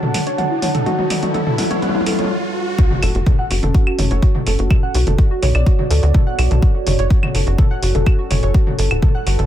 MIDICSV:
0, 0, Header, 1, 7, 480
1, 0, Start_track
1, 0, Tempo, 480000
1, 865, Time_signature, 4, 2, 24, 8
1, 9461, End_track
2, 0, Start_track
2, 0, Title_t, "Ambient pad"
2, 0, Program_c, 0, 92
2, 0, Note_on_c, 0, 66, 84
2, 0, Note_on_c, 0, 73, 77
2, 0, Note_on_c, 0, 78, 80
2, 0, Note_on_c, 0, 81, 98
2, 824, Note_off_c, 0, 66, 0
2, 824, Note_off_c, 0, 73, 0
2, 844, Note_off_c, 0, 81, 0
2, 845, Note_off_c, 0, 78, 0
2, 2784, Note_on_c, 0, 61, 87
2, 2784, Note_on_c, 0, 66, 78
2, 2784, Note_on_c, 0, 69, 96
2, 4685, Note_off_c, 0, 61, 0
2, 4685, Note_off_c, 0, 69, 0
2, 4706, Note_on_c, 0, 73, 80
2, 4707, Note_on_c, 0, 59, 86
2, 4707, Note_on_c, 0, 74, 97
2, 6606, Note_off_c, 0, 73, 0
2, 6607, Note_off_c, 0, 59, 0
2, 6607, Note_off_c, 0, 74, 0
2, 6624, Note_on_c, 0, 69, 96
2, 6625, Note_on_c, 0, 61, 88
2, 8504, Note_off_c, 0, 66, 0
2, 8525, Note_off_c, 0, 61, 0
2, 8543, Note_on_c, 0, 55, 88
2, 8543, Note_on_c, 0, 62, 79
2, 8543, Note_on_c, 0, 71, 97
2, 9461, Note_off_c, 0, 55, 0
2, 9461, Note_off_c, 0, 62, 0
2, 9461, Note_off_c, 0, 69, 0
2, 9461, Note_off_c, 0, 71, 0
2, 9461, End_track
3, 0, Start_track
3, 0, Title_t, "Synth pluck"
3, 0, Program_c, 1, 84
3, 28, Note_on_c, 1, 69, 80
3, 114, Note_off_c, 1, 69, 0
3, 144, Note_on_c, 1, 78, 75
3, 235, Note_off_c, 1, 78, 0
3, 268, Note_on_c, 1, 73, 102
3, 354, Note_off_c, 1, 73, 0
3, 383, Note_on_c, 1, 78, 98
3, 474, Note_off_c, 1, 78, 0
3, 506, Note_on_c, 1, 64, 78
3, 593, Note_off_c, 1, 64, 0
3, 622, Note_on_c, 1, 73, 76
3, 741, Note_off_c, 1, 73, 0
3, 746, Note_on_c, 1, 69, 79
3, 833, Note_off_c, 1, 69, 0
3, 862, Note_on_c, 1, 66, 100
3, 954, Note_off_c, 1, 66, 0
3, 986, Note_on_c, 1, 66, 76
3, 1098, Note_off_c, 1, 66, 0
3, 1103, Note_on_c, 1, 74, 73
3, 1195, Note_off_c, 1, 74, 0
3, 1226, Note_on_c, 1, 66, 79
3, 1313, Note_off_c, 1, 66, 0
3, 1343, Note_on_c, 1, 69, 83
3, 1398, Note_off_c, 1, 69, 0
3, 1466, Note_on_c, 1, 69, 76
3, 1553, Note_off_c, 1, 69, 0
3, 1584, Note_on_c, 1, 78, 79
3, 1675, Note_off_c, 1, 78, 0
3, 1707, Note_on_c, 1, 73, 107
3, 1794, Note_off_c, 1, 73, 0
3, 1824, Note_on_c, 1, 78, 101
3, 1915, Note_off_c, 1, 78, 0
3, 1947, Note_on_c, 1, 64, 78
3, 2033, Note_off_c, 1, 64, 0
3, 2064, Note_on_c, 1, 69, 77
3, 2155, Note_off_c, 1, 69, 0
3, 2188, Note_on_c, 1, 73, 78
3, 2299, Note_off_c, 1, 73, 0
3, 2785, Note_on_c, 1, 66, 81
3, 2839, Note_off_c, 1, 66, 0
3, 2909, Note_on_c, 1, 66, 77
3, 2994, Note_off_c, 1, 66, 0
3, 3026, Note_on_c, 1, 69, 74
3, 3142, Note_off_c, 1, 69, 0
3, 3149, Note_on_c, 1, 66, 78
3, 3200, Note_off_c, 1, 66, 0
3, 3265, Note_on_c, 1, 69, 80
3, 3319, Note_off_c, 1, 69, 0
3, 3388, Note_on_c, 1, 78, 100
3, 3499, Note_off_c, 1, 78, 0
3, 3505, Note_on_c, 1, 66, 79
3, 3595, Note_off_c, 1, 66, 0
3, 3629, Note_on_c, 1, 69, 79
3, 3739, Note_off_c, 1, 69, 0
3, 3744, Note_on_c, 1, 66, 82
3, 3835, Note_off_c, 1, 66, 0
3, 3869, Note_on_c, 1, 66, 79
3, 3920, Note_off_c, 1, 66, 0
3, 3985, Note_on_c, 1, 73, 75
3, 4096, Note_off_c, 1, 73, 0
3, 4108, Note_on_c, 1, 73, 110
3, 4160, Note_off_c, 1, 73, 0
3, 4226, Note_on_c, 1, 66, 79
3, 4280, Note_off_c, 1, 66, 0
3, 4350, Note_on_c, 1, 66, 78
3, 4435, Note_off_c, 1, 66, 0
3, 4466, Note_on_c, 1, 69, 78
3, 4583, Note_off_c, 1, 69, 0
3, 4590, Note_on_c, 1, 66, 78
3, 4640, Note_off_c, 1, 66, 0
3, 4707, Note_on_c, 1, 69, 82
3, 4760, Note_off_c, 1, 69, 0
3, 4830, Note_on_c, 1, 78, 99
3, 4940, Note_off_c, 1, 78, 0
3, 4946, Note_on_c, 1, 66, 75
3, 5036, Note_off_c, 1, 66, 0
3, 5069, Note_on_c, 1, 69, 77
3, 5179, Note_off_c, 1, 69, 0
3, 5186, Note_on_c, 1, 66, 86
3, 5276, Note_off_c, 1, 66, 0
3, 5309, Note_on_c, 1, 66, 79
3, 5360, Note_off_c, 1, 66, 0
3, 5426, Note_on_c, 1, 73, 77
3, 5542, Note_off_c, 1, 73, 0
3, 5549, Note_on_c, 1, 74, 105
3, 5600, Note_off_c, 1, 74, 0
3, 5666, Note_on_c, 1, 66, 81
3, 5720, Note_off_c, 1, 66, 0
3, 5788, Note_on_c, 1, 66, 80
3, 5874, Note_off_c, 1, 66, 0
3, 5905, Note_on_c, 1, 69, 75
3, 6022, Note_off_c, 1, 69, 0
3, 6028, Note_on_c, 1, 66, 79
3, 6080, Note_off_c, 1, 66, 0
3, 6144, Note_on_c, 1, 69, 83
3, 6199, Note_off_c, 1, 69, 0
3, 6268, Note_on_c, 1, 78, 104
3, 6379, Note_off_c, 1, 78, 0
3, 6384, Note_on_c, 1, 66, 77
3, 6475, Note_off_c, 1, 66, 0
3, 6507, Note_on_c, 1, 69, 77
3, 6618, Note_off_c, 1, 69, 0
3, 6624, Note_on_c, 1, 66, 83
3, 6715, Note_off_c, 1, 66, 0
3, 6747, Note_on_c, 1, 66, 77
3, 6799, Note_off_c, 1, 66, 0
3, 6865, Note_on_c, 1, 73, 74
3, 6976, Note_off_c, 1, 73, 0
3, 6988, Note_on_c, 1, 73, 104
3, 7040, Note_off_c, 1, 73, 0
3, 7104, Note_on_c, 1, 66, 85
3, 7159, Note_off_c, 1, 66, 0
3, 7228, Note_on_c, 1, 66, 78
3, 7314, Note_off_c, 1, 66, 0
3, 7345, Note_on_c, 1, 69, 79
3, 7462, Note_off_c, 1, 69, 0
3, 7468, Note_on_c, 1, 66, 77
3, 7519, Note_off_c, 1, 66, 0
3, 7584, Note_on_c, 1, 69, 86
3, 7639, Note_off_c, 1, 69, 0
3, 7708, Note_on_c, 1, 78, 104
3, 7819, Note_off_c, 1, 78, 0
3, 7825, Note_on_c, 1, 66, 78
3, 7916, Note_off_c, 1, 66, 0
3, 7948, Note_on_c, 1, 69, 82
3, 8059, Note_off_c, 1, 69, 0
3, 8065, Note_on_c, 1, 66, 83
3, 8155, Note_off_c, 1, 66, 0
3, 8188, Note_on_c, 1, 66, 78
3, 8240, Note_off_c, 1, 66, 0
3, 8305, Note_on_c, 1, 73, 77
3, 8416, Note_off_c, 1, 73, 0
3, 8428, Note_on_c, 1, 73, 107
3, 8480, Note_off_c, 1, 73, 0
3, 8546, Note_on_c, 1, 66, 82
3, 8600, Note_off_c, 1, 66, 0
3, 8669, Note_on_c, 1, 66, 78
3, 8754, Note_off_c, 1, 66, 0
3, 8785, Note_on_c, 1, 69, 74
3, 8902, Note_off_c, 1, 69, 0
3, 8908, Note_on_c, 1, 66, 77
3, 8960, Note_off_c, 1, 66, 0
3, 9025, Note_on_c, 1, 69, 84
3, 9079, Note_off_c, 1, 69, 0
3, 9147, Note_on_c, 1, 78, 98
3, 9258, Note_off_c, 1, 78, 0
3, 9264, Note_on_c, 1, 66, 75
3, 9355, Note_off_c, 1, 66, 0
3, 9388, Note_on_c, 1, 69, 77
3, 9461, Note_off_c, 1, 69, 0
3, 9461, End_track
4, 0, Start_track
4, 0, Title_t, "Analog synth bass"
4, 0, Program_c, 2, 38
4, 3026, Note_on_c, 2, 30, 92
4, 3126, Note_off_c, 2, 30, 0
4, 3149, Note_on_c, 2, 30, 84
4, 3244, Note_off_c, 2, 30, 0
4, 3505, Note_on_c, 2, 30, 96
4, 3606, Note_off_c, 2, 30, 0
4, 3628, Note_on_c, 2, 30, 80
4, 3724, Note_off_c, 2, 30, 0
4, 3985, Note_on_c, 2, 30, 94
4, 4086, Note_off_c, 2, 30, 0
4, 4108, Note_on_c, 2, 30, 85
4, 4204, Note_off_c, 2, 30, 0
4, 4465, Note_on_c, 2, 30, 97
4, 4566, Note_off_c, 2, 30, 0
4, 4589, Note_on_c, 2, 30, 83
4, 4684, Note_off_c, 2, 30, 0
4, 4944, Note_on_c, 2, 35, 96
4, 5046, Note_off_c, 2, 35, 0
4, 5068, Note_on_c, 2, 30, 80
4, 5164, Note_off_c, 2, 30, 0
4, 5425, Note_on_c, 2, 35, 92
4, 5526, Note_off_c, 2, 35, 0
4, 5547, Note_on_c, 2, 35, 82
4, 5643, Note_off_c, 2, 35, 0
4, 5904, Note_on_c, 2, 38, 96
4, 6006, Note_off_c, 2, 38, 0
4, 6029, Note_on_c, 2, 38, 85
4, 6124, Note_off_c, 2, 38, 0
4, 6384, Note_on_c, 2, 35, 99
4, 6486, Note_off_c, 2, 35, 0
4, 6509, Note_on_c, 2, 35, 88
4, 6604, Note_off_c, 2, 35, 0
4, 6866, Note_on_c, 2, 30, 92
4, 6966, Note_off_c, 2, 30, 0
4, 6989, Note_on_c, 2, 30, 80
4, 7084, Note_off_c, 2, 30, 0
4, 7346, Note_on_c, 2, 30, 96
4, 7446, Note_off_c, 2, 30, 0
4, 7468, Note_on_c, 2, 30, 85
4, 7564, Note_off_c, 2, 30, 0
4, 7825, Note_on_c, 2, 30, 94
4, 7926, Note_off_c, 2, 30, 0
4, 7949, Note_on_c, 2, 30, 84
4, 8044, Note_off_c, 2, 30, 0
4, 8305, Note_on_c, 2, 30, 98
4, 8406, Note_off_c, 2, 30, 0
4, 8429, Note_on_c, 2, 30, 88
4, 8524, Note_off_c, 2, 30, 0
4, 8786, Note_on_c, 2, 31, 95
4, 8886, Note_off_c, 2, 31, 0
4, 8909, Note_on_c, 2, 26, 80
4, 9004, Note_off_c, 2, 26, 0
4, 9265, Note_on_c, 2, 31, 95
4, 9366, Note_off_c, 2, 31, 0
4, 9388, Note_on_c, 2, 31, 80
4, 9461, Note_off_c, 2, 31, 0
4, 9461, End_track
5, 0, Start_track
5, 0, Title_t, "Impact"
5, 0, Program_c, 3, 103
5, 2785, Note_on_c, 3, 60, 76
5, 4705, Note_off_c, 3, 60, 0
5, 9461, End_track
6, 0, Start_track
6, 0, Title_t, "Riser"
6, 0, Program_c, 4, 103
6, 0, Note_on_c, 4, 60, 79
6, 2784, Note_off_c, 4, 60, 0
6, 9461, End_track
7, 0, Start_track
7, 0, Title_t, "Drums"
7, 27, Note_on_c, 9, 47, 91
7, 127, Note_off_c, 9, 47, 0
7, 144, Note_on_c, 9, 46, 110
7, 144, Note_on_c, 9, 47, 86
7, 244, Note_off_c, 9, 46, 0
7, 244, Note_off_c, 9, 47, 0
7, 267, Note_on_c, 9, 42, 47
7, 367, Note_off_c, 9, 42, 0
7, 384, Note_on_c, 9, 42, 34
7, 384, Note_on_c, 9, 47, 85
7, 484, Note_off_c, 9, 42, 0
7, 484, Note_off_c, 9, 47, 0
7, 624, Note_on_c, 9, 46, 95
7, 624, Note_on_c, 9, 47, 92
7, 724, Note_off_c, 9, 46, 0
7, 724, Note_off_c, 9, 47, 0
7, 747, Note_on_c, 9, 42, 44
7, 747, Note_on_c, 9, 47, 88
7, 847, Note_off_c, 9, 42, 0
7, 847, Note_off_c, 9, 47, 0
7, 863, Note_on_c, 9, 42, 33
7, 863, Note_on_c, 9, 47, 90
7, 963, Note_off_c, 9, 42, 0
7, 963, Note_off_c, 9, 47, 0
7, 986, Note_on_c, 9, 47, 81
7, 1086, Note_off_c, 9, 47, 0
7, 1103, Note_on_c, 9, 46, 111
7, 1103, Note_on_c, 9, 47, 97
7, 1203, Note_off_c, 9, 46, 0
7, 1203, Note_off_c, 9, 47, 0
7, 1227, Note_on_c, 9, 42, 46
7, 1227, Note_on_c, 9, 47, 86
7, 1327, Note_off_c, 9, 42, 0
7, 1327, Note_off_c, 9, 47, 0
7, 1343, Note_on_c, 9, 42, 34
7, 1343, Note_on_c, 9, 47, 97
7, 1443, Note_off_c, 9, 42, 0
7, 1443, Note_off_c, 9, 47, 0
7, 1466, Note_on_c, 9, 47, 96
7, 1566, Note_off_c, 9, 47, 0
7, 1583, Note_on_c, 9, 46, 90
7, 1583, Note_on_c, 9, 47, 98
7, 1683, Note_off_c, 9, 46, 0
7, 1683, Note_off_c, 9, 47, 0
7, 1707, Note_on_c, 9, 42, 44
7, 1707, Note_on_c, 9, 47, 87
7, 1807, Note_off_c, 9, 42, 0
7, 1807, Note_off_c, 9, 47, 0
7, 1824, Note_on_c, 9, 42, 34
7, 1824, Note_on_c, 9, 47, 99
7, 1885, Note_off_c, 9, 47, 0
7, 1885, Note_on_c, 9, 47, 87
7, 1924, Note_off_c, 9, 42, 0
7, 1948, Note_off_c, 9, 47, 0
7, 1948, Note_on_c, 9, 47, 92
7, 2006, Note_off_c, 9, 47, 0
7, 2006, Note_on_c, 9, 47, 98
7, 2064, Note_off_c, 9, 47, 0
7, 2064, Note_on_c, 9, 46, 108
7, 2064, Note_on_c, 9, 47, 107
7, 2126, Note_off_c, 9, 47, 0
7, 2126, Note_on_c, 9, 47, 94
7, 2164, Note_off_c, 9, 46, 0
7, 2187, Note_off_c, 9, 47, 0
7, 2187, Note_on_c, 9, 42, 45
7, 2187, Note_on_c, 9, 47, 98
7, 2245, Note_off_c, 9, 47, 0
7, 2245, Note_on_c, 9, 47, 94
7, 2287, Note_off_c, 9, 42, 0
7, 2345, Note_off_c, 9, 47, 0
7, 2784, Note_on_c, 9, 36, 118
7, 2785, Note_on_c, 9, 42, 35
7, 2884, Note_off_c, 9, 36, 0
7, 2885, Note_off_c, 9, 42, 0
7, 2908, Note_on_c, 9, 47, 94
7, 3008, Note_off_c, 9, 47, 0
7, 3025, Note_on_c, 9, 46, 109
7, 3025, Note_on_c, 9, 75, 53
7, 3125, Note_off_c, 9, 46, 0
7, 3125, Note_off_c, 9, 75, 0
7, 3149, Note_on_c, 9, 42, 47
7, 3249, Note_off_c, 9, 42, 0
7, 3265, Note_on_c, 9, 36, 127
7, 3266, Note_on_c, 9, 42, 36
7, 3266, Note_on_c, 9, 47, 94
7, 3365, Note_off_c, 9, 36, 0
7, 3366, Note_off_c, 9, 42, 0
7, 3366, Note_off_c, 9, 47, 0
7, 3506, Note_on_c, 9, 46, 94
7, 3606, Note_off_c, 9, 46, 0
7, 3629, Note_on_c, 9, 42, 47
7, 3629, Note_on_c, 9, 47, 93
7, 3729, Note_off_c, 9, 42, 0
7, 3729, Note_off_c, 9, 47, 0
7, 3745, Note_on_c, 9, 36, 124
7, 3746, Note_on_c, 9, 42, 34
7, 3845, Note_off_c, 9, 36, 0
7, 3846, Note_off_c, 9, 42, 0
7, 3869, Note_on_c, 9, 75, 53
7, 3969, Note_off_c, 9, 75, 0
7, 3986, Note_on_c, 9, 46, 108
7, 3986, Note_on_c, 9, 47, 93
7, 4086, Note_off_c, 9, 46, 0
7, 4086, Note_off_c, 9, 47, 0
7, 4109, Note_on_c, 9, 42, 51
7, 4209, Note_off_c, 9, 42, 0
7, 4225, Note_on_c, 9, 36, 123
7, 4225, Note_on_c, 9, 42, 36
7, 4325, Note_off_c, 9, 36, 0
7, 4325, Note_off_c, 9, 42, 0
7, 4348, Note_on_c, 9, 47, 94
7, 4448, Note_off_c, 9, 47, 0
7, 4465, Note_on_c, 9, 46, 93
7, 4565, Note_off_c, 9, 46, 0
7, 4589, Note_on_c, 9, 42, 46
7, 4689, Note_off_c, 9, 42, 0
7, 4705, Note_on_c, 9, 36, 122
7, 4705, Note_on_c, 9, 42, 35
7, 4705, Note_on_c, 9, 47, 87
7, 4705, Note_on_c, 9, 75, 49
7, 4805, Note_off_c, 9, 36, 0
7, 4805, Note_off_c, 9, 42, 0
7, 4805, Note_off_c, 9, 47, 0
7, 4805, Note_off_c, 9, 75, 0
7, 4945, Note_on_c, 9, 46, 112
7, 5045, Note_off_c, 9, 46, 0
7, 5069, Note_on_c, 9, 42, 50
7, 5069, Note_on_c, 9, 47, 92
7, 5169, Note_off_c, 9, 42, 0
7, 5169, Note_off_c, 9, 47, 0
7, 5185, Note_on_c, 9, 36, 123
7, 5186, Note_on_c, 9, 42, 36
7, 5285, Note_off_c, 9, 36, 0
7, 5286, Note_off_c, 9, 42, 0
7, 5425, Note_on_c, 9, 46, 96
7, 5425, Note_on_c, 9, 47, 89
7, 5525, Note_off_c, 9, 46, 0
7, 5525, Note_off_c, 9, 47, 0
7, 5549, Note_on_c, 9, 42, 48
7, 5549, Note_on_c, 9, 75, 49
7, 5649, Note_off_c, 9, 42, 0
7, 5649, Note_off_c, 9, 75, 0
7, 5664, Note_on_c, 9, 36, 127
7, 5665, Note_on_c, 9, 42, 35
7, 5764, Note_off_c, 9, 36, 0
7, 5765, Note_off_c, 9, 42, 0
7, 5788, Note_on_c, 9, 47, 89
7, 5888, Note_off_c, 9, 47, 0
7, 5905, Note_on_c, 9, 46, 114
7, 6005, Note_off_c, 9, 46, 0
7, 6030, Note_on_c, 9, 42, 49
7, 6130, Note_off_c, 9, 42, 0
7, 6144, Note_on_c, 9, 36, 127
7, 6147, Note_on_c, 9, 42, 35
7, 6147, Note_on_c, 9, 47, 89
7, 6244, Note_off_c, 9, 36, 0
7, 6247, Note_off_c, 9, 42, 0
7, 6247, Note_off_c, 9, 47, 0
7, 6386, Note_on_c, 9, 46, 98
7, 6386, Note_on_c, 9, 75, 54
7, 6486, Note_off_c, 9, 46, 0
7, 6486, Note_off_c, 9, 75, 0
7, 6510, Note_on_c, 9, 42, 47
7, 6510, Note_on_c, 9, 47, 88
7, 6610, Note_off_c, 9, 42, 0
7, 6610, Note_off_c, 9, 47, 0
7, 6624, Note_on_c, 9, 36, 127
7, 6626, Note_on_c, 9, 42, 34
7, 6724, Note_off_c, 9, 36, 0
7, 6726, Note_off_c, 9, 42, 0
7, 6866, Note_on_c, 9, 46, 111
7, 6866, Note_on_c, 9, 47, 91
7, 6966, Note_off_c, 9, 46, 0
7, 6966, Note_off_c, 9, 47, 0
7, 6990, Note_on_c, 9, 42, 49
7, 7090, Note_off_c, 9, 42, 0
7, 7104, Note_on_c, 9, 36, 127
7, 7106, Note_on_c, 9, 42, 36
7, 7204, Note_off_c, 9, 36, 0
7, 7206, Note_off_c, 9, 42, 0
7, 7230, Note_on_c, 9, 47, 94
7, 7230, Note_on_c, 9, 75, 54
7, 7330, Note_off_c, 9, 47, 0
7, 7330, Note_off_c, 9, 75, 0
7, 7346, Note_on_c, 9, 46, 93
7, 7446, Note_off_c, 9, 46, 0
7, 7470, Note_on_c, 9, 42, 46
7, 7570, Note_off_c, 9, 42, 0
7, 7584, Note_on_c, 9, 36, 127
7, 7586, Note_on_c, 9, 42, 34
7, 7586, Note_on_c, 9, 47, 91
7, 7684, Note_off_c, 9, 36, 0
7, 7686, Note_off_c, 9, 42, 0
7, 7686, Note_off_c, 9, 47, 0
7, 7825, Note_on_c, 9, 46, 110
7, 7925, Note_off_c, 9, 46, 0
7, 7950, Note_on_c, 9, 42, 48
7, 7950, Note_on_c, 9, 47, 93
7, 8050, Note_off_c, 9, 42, 0
7, 8050, Note_off_c, 9, 47, 0
7, 8064, Note_on_c, 9, 36, 127
7, 8066, Note_on_c, 9, 42, 34
7, 8066, Note_on_c, 9, 75, 50
7, 8164, Note_off_c, 9, 36, 0
7, 8166, Note_off_c, 9, 42, 0
7, 8166, Note_off_c, 9, 75, 0
7, 8306, Note_on_c, 9, 46, 96
7, 8306, Note_on_c, 9, 47, 90
7, 8406, Note_off_c, 9, 46, 0
7, 8406, Note_off_c, 9, 47, 0
7, 8429, Note_on_c, 9, 42, 45
7, 8529, Note_off_c, 9, 42, 0
7, 8544, Note_on_c, 9, 36, 127
7, 8546, Note_on_c, 9, 42, 32
7, 8644, Note_off_c, 9, 36, 0
7, 8646, Note_off_c, 9, 42, 0
7, 8669, Note_on_c, 9, 47, 91
7, 8769, Note_off_c, 9, 47, 0
7, 8786, Note_on_c, 9, 46, 112
7, 8886, Note_off_c, 9, 46, 0
7, 8910, Note_on_c, 9, 42, 45
7, 8910, Note_on_c, 9, 75, 57
7, 9010, Note_off_c, 9, 42, 0
7, 9010, Note_off_c, 9, 75, 0
7, 9024, Note_on_c, 9, 36, 127
7, 9026, Note_on_c, 9, 42, 33
7, 9026, Note_on_c, 9, 47, 94
7, 9124, Note_off_c, 9, 36, 0
7, 9126, Note_off_c, 9, 42, 0
7, 9126, Note_off_c, 9, 47, 0
7, 9266, Note_on_c, 9, 46, 94
7, 9366, Note_off_c, 9, 46, 0
7, 9390, Note_on_c, 9, 42, 45
7, 9390, Note_on_c, 9, 47, 88
7, 9461, Note_off_c, 9, 42, 0
7, 9461, Note_off_c, 9, 47, 0
7, 9461, End_track
0, 0, End_of_file